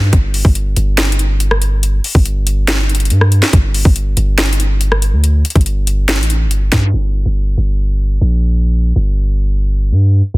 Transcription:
Already playing: G2
0.13 G1, kick, closed hi-hat
0.34 open hi-hat
0.45 G1, kick
0.55 closed hi-hat
0.76 G1, closed hi-hat
0.98 snare, closed hi-hat
1.05 closed hi-hat
1.12 closed hi-hat
1.19 closed hi-hat
1.40 closed hi-hat
1.51 cross-stick
1.62 closed hi-hat
1.83 closed hi-hat
2.04 open hi-hat
2.15 G1, kick
2.25 closed hi-hat
2.47 closed hi-hat
2.68 snare, closed hi-hat
2.89 closed hi-hat
2.95 closed hi-hat
3.00 closed hi-hat
3.05 closed hi-hat
3.10 G2, closed hi-hat
3.21 cross-stick
3.32 closed hi-hat
3.43 snare
3.53 G1, kick, closed hi-hat
3.74 open hi-hat
3.85 G1, kick
3.96 closed hi-hat
4.17 G1, closed hi-hat
4.38 snare, closed hi-hat
4.46 closed hi-hat
4.53 closed hi-hat
4.60 closed hi-hat
4.81 closed hi-hat
4.92 cross-stick
5.02 closed hi-hat
5.13 D2
5.24 closed hi-hat
5.45 closed hi-hat, open hi-hat
5.50 closed hi-hat
5.55 G1, kick, closed hi-hat
5.61 closed hi-hat
5.66 closed hi-hat
5.87 closed hi-hat
6.09 snare, closed hi-hat
6.16 A1, closed hi-hat
6.23 closed hi-hat
6.30 closed hi-hat
6.46 G1
6.51 closed hi-hat
6.72 G2, kick, snare, closed hi-hat
6.94 G1
7.26 G1
7.58 G1
8.21 A#1
8.96 G1
9.92 G2
10.34 G1

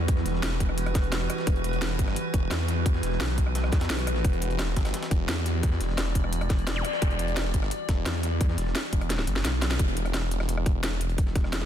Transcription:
Already playing: E2 E3 G3 F#4 B4
0.08 kick, closed hi-hat
0.17 snare
0.26 E1, snare, closed hi-hat
0.34 snare
0.43 E1, snare, closed hi-hat
0.52 snare
0.60 kick, closed hi-hat
0.69 cross-stick
0.78 closed hi-hat
0.86 cross-stick, closed hi-hat
0.95 kick, snare, closed hi-hat
1.04 closed hi-hat
1.12 snare, closed hi-hat
1.21 cross-stick, snare
1.30 cross-stick, closed hi-hat
1.38 snare
1.47 E1, kick, closed hi-hat
1.56 closed hi-hat
1.64 closed hi-hat
1.73 closed hi-hat
1.82 snare, closed hi-hat
1.99 G1, kick, closed hi-hat
2.08 cross-stick, snare
2.16 closed hi-hat
2.34 E1, kick, closed hi-hat
2.51 E2, snare, closed hi-hat
2.60 snare
2.68 snare, closed hi-hat
2.86 kick, closed hi-hat
2.94 snare
3.03 E1, snare, closed hi-hat
3.12 snare
3.20 B1, snare, closed hi-hat
3.29 snare
3.38 kick, closed hi-hat
3.47 cross-stick
3.55 snare, closed hi-hat
3.64 cross-stick, snare
3.72 E2, kick, snare, closed hi-hat
3.81 snare, closed hi-hat
3.90 B1, snare, closed hi-hat
3.98 cross-stick, snare, closed hi-hat
4.07 cross-stick, closed hi-hat
4.16 snare
4.24 E1 D5, kick, closed hi-hat
4.33 closed hi-hat
4.42 closed hi-hat
4.51 closed hi-hat
4.59 snare, closed hi-hat
4.77 G1, kick, snare, closed hi-hat
4.85 cross-stick, snare, closed hi-hat
4.94 snare, closed hi-hat
5.03 snare, closed hi-hat
5.11 E1, kick, closed hi-hat
5.29 E2, snare, closed hi-hat
5.37 snare
5.46 snare, closed hi-hat
5.63 kick, closed hi-hat
5.72 snare
5.81 E1, snare, closed hi-hat
5.89 snare
5.98 snare, closed hi-hat
6.07 snare
6.15 kick, closed hi-hat
6.24 cross-stick
6.33 closed hi-hat
6.41 cross-stick, closed hi-hat
6.50 kick, snare, closed hi-hat
6.59 closed hi-hat
6.67 snare, closed hi-hat
6.76 cross-stick, snare, zap
6.85 cross-stick, closed hi-hat
6.93 snare
7.02 E1, kick, closed hi-hat
7.11 closed hi-hat
7.19 closed hi-hat
7.28 closed hi-hat
7.37 snare, closed hi-hat
7.54 G1, kick, closed hi-hat
7.63 cross-stick, snare
7.71 closed hi-hat
7.89 E1, kick, snare, closed hi-hat
8.06 E2, snare, closed hi-hat
8.15 snare
8.23 snare, closed hi-hat
8.41 kick, closed hi-hat
8.49 snare
8.58 E1, snare, closed hi-hat
8.67 snare
8.75 snare, closed hi-hat
8.84 snare
8.93 E1, kick, closed hi-hat
9.01 cross-stick, closed hi-hat
9.10 snare, closed hi-hat
9.19 snare
9.27 F#1, closed hi-hat
9.36 snare
9.45 B1, snare, closed hi-hat
9.53 snare
9.62 snare, closed hi-hat
9.71 snare, closed hi-hat
9.79 E1, kick, closed hi-hat
9.88 closed hi-hat
9.97 E1, closed hi-hat
10.05 cross-stick, closed hi-hat
10.14 snare, closed hi-hat
10.31 closed hi-hat
10.40 cross-stick, snare
10.49 E1, closed hi-hat
10.58 cross-stick
10.66 kick, closed hi-hat
10.83 snare, closed hi-hat
10.92 snare
11.01 closed hi-hat
11.09 closed hi-hat
11.18 kick, closed hi-hat
11.27 snare
11.36 E1, kick, snare, closed hi-hat
11.44 cross-stick, snare
11.53 snare, closed hi-hat
11.62 snare

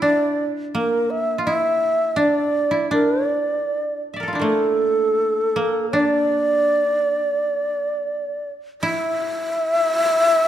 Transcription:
Already playing: E4
0.02 D4 D5
0.75 A#3 A#4
1.10 E5
1.38 F4
1.45 E4 E5
2.16 D4 D5
2.71 E4
2.91 D4 A#4
3.28 D5
4.14 D5 E5
4.20 A4 A#4
4.28 F4
4.33 D4 E4
4.39 A3 A#3 A4
5.56 A#3
5.91 D4 D5
6.85 D#4
7.09 D4
7.36 D#4
7.61 D4
8.82 E4 E5

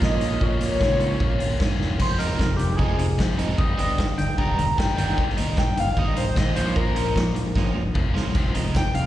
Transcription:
Already playing: A#2 F3 A#3 C#4 F4
0.00 A#1 C#4 D#5, kick, snare
0.21 F4, closed hi-hat
0.41 A#2 C#5, kick
0.60 A#2 A#3, closed hi-hat
0.79 C#2 C#4, kick, snare
1.00 F3, closed hi-hat
1.19 A#1 A#3, kick
1.39 G#1 F4, closed hi-hat
1.59 G1 C#4, kick, snare
1.78 F1 F4, snare
1.99 F1 F2 C3 F3 C5, kick, crash
2.18 F2 C3 F3 G#3 C4 D#4 A#4, closed hi-hat
2.38 F1 F2 C3, kick, snare
2.56 F1 F2 C3 G4, closed hi-hat
2.76 F1 F2 C3 F3 G#3 C4 D#4 G#4, kick
2.98 F2 C3, closed hi-hat
3.18 F1 F2 C3 F3, kick, snare
3.38 F2 C3 F3 G#3 C4 D#4, closed hi-hat
3.57 G1 G2 D3 G3 D#5, kick
3.77 G2 D3 G3 B3 D4 G4, closed hi-hat
3.98 G1 G2 D3, kick, snare
4.18 G2 D3 G5, closed hi-hat
4.38 E1 G2 D3 G3 B3 D4 G4 A#5, kick
4.57 G2 D3, closed hi-hat
4.77 G1 G2 D3 G3 G5, kick, snare
4.97 G1 D#2 A#2 D#3 G3 A#3 D#4, closed hi-hat
5.17 D#2 A#2 D#3, kick
5.30 snare
5.37 D#2 A#2 D#3 G3 A#3 D#4, closed hi-hat
5.57 G1 D#2 A#2 G5, kick, snare
5.77 G1 D#2 A#2 F5, closed hi-hat
5.97 G1 D#2 A#2 D#3 G3 A#3 D#4 D#5, kick
6.16 D#2 A#2 C5, snare, closed hi-hat
6.36 G#1 D#2 A#2 D#3 D#5, kick, snare
6.56 A#1 A#2 F3 A#3 C#4 F4 C5, closed hi-hat
6.75 A#2 F3 A#3 A#4, kick
6.96 A#2 F3 A#3 C#4 F4, closed hi-hat
7.16 A#1 A#2 F3, kick, snare
7.35 A#2 F3, closed hi-hat
7.55 G1 A#2 F3 A#3 C#4 F4, kick, snare
7.75 A#2 F3
7.94 C2 A#2 F3 A#3, kick, mid tom
8.14 A#2 F3 A#3 C#4 F4, snare
8.34 F1 F2 C3 F3, kick, crash
8.54 F2 C3 F3 G#3 C4 D#4, closed hi-hat
8.74 F1 F2 C3 G5, kick, snare
8.94 F1 F2 C3 F5, closed hi-hat

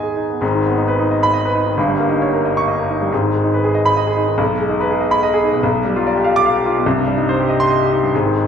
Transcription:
Already playing: G#2 D#3 B3 D#4 G#4 B4 D#5 G#5
0.03 G#4
0.16 D#4
0.30 B3
0.41 G#1 G#2
0.55 D#3
0.66 B3
0.78 D#4
0.88 B4
0.99 D#4
1.11 D#5
1.23 B5
1.34 D#5
1.45 B4
1.55 D#4
1.66 D#3
1.77 G1 G2
1.88 G3
2.00 A#3
2.09 D#4
2.22 C#5
2.33 A#4
2.45 D#5
2.57 C#6
2.68 D#5
2.79 A#4
2.90 D#4
3.02 G3
3.12 G#1 G#2
3.22 D#3
3.34 G#3
3.44 D#4
3.54 B4
3.64 G#4
3.75 D#5
3.85 B5
3.97 D#5
4.07 G#4
4.17 D#4
4.28 D#3
4.38 B1
4.60 G#3
4.69 D#4
4.80 B4
4.91 G#4
5.01 D#5
5.11 B5
5.23 D#5
5.34 G#4
5.43 D#4
5.52 B2
5.63 B1
5.74 B2
5.85 G3
5.96 F4
6.07 D5
6.15 G4
6.24 F5
6.36 D6
6.46 F5
6.56 G4
6.66 F4
6.76 B2
6.86 C2
6.98 G2
7.08 G3
7.18 D#4
7.29 C5
7.40 G4
7.49 D#5
7.60 C6
7.70 D#5
7.82 G4
7.92 D#4
8.03 G2
8.14 G#1 G#2
8.26 D#3
8.36 G#3

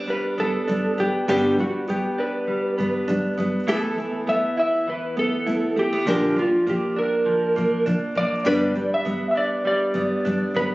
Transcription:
Already playing: B3 D4
0.08 G3 B4
0.38 G2 D3 G3 B3 A4
0.67 G2 D3 G3 D4
0.98 G2 D3 G3 B3 G4
1.28 G2 D3 G3 B3 D4 G4
1.58 G2 D3 G3 F#4
1.88 G2 D3 G3 B3 G4
2.18 D4 B4
2.48 G3
2.78 G2 D3 G3 B3
3.08 G2 D3 G3 D4
3.38 G2 D3 G3 B3
3.67 E3 A3 B3 E4 A4
3.97 E3 A3 B3
4.27 A3 B3 E5
4.57 E4 E5
4.87 E3 B4
5.17 A3 B3 A4
5.46 A3 B3 E4
5.76 A3 B3 G4
5.93 B3
6.06 A#2 D3 F3 A#3 D4 G4 A#4
6.36 A#2 D3 F3 F4
6.67 A#2 D3 F3 A#3 G4
6.96 D4 A#4
7.26 F3
7.56 A#2 D3 F3 A#3
7.86 A#2 D3 F3 D4
8.15 A#2 D3 F3 A#3 D5
8.45 G2 D3 G3 B3 D4 B4 D5
8.75 G2 D3 G3
8.94 E5
9.05 G2 D3 G3 B3
9.31 E5
9.35 D4 D5
9.65 G3 D5
9.94 G2 D3 G3 B3
10.25 G2 D3 G3 D4
10.54 G2 D3 G3 B3 B4

